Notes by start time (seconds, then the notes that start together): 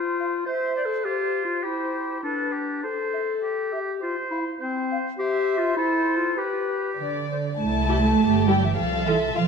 Already playing: F4 C5
0.19 F5
0.46 C5 E5
0.76 D5
0.85 A4
1.04 F4 G4 C5
1.45 F4
1.63 E4 G4 C5
2.22 D4 A4 B4
2.52 G4
2.83 A4 C5
3.14 E5
3.42 G4
3.73 G4 E5
4.01 F4 C5
4.31 E4 F5
4.60 C4 C5
4.91 F5
5.18 G4 C5 E5
5.57 F4
5.76 E4 A4 C5
6.16 F4
6.37 G4 B4
6.97 D3 D5
7.30 C5
7.58 C2 A3 E4 A5
7.89 E4 G4
8.19 G1 G4
8.47 G3 E4 G4 G5
8.63 E3 E5
8.76 C2 F3 A4 F5
9.06 E3 F4 A4 E5
9.34 C2 F3 F4 F5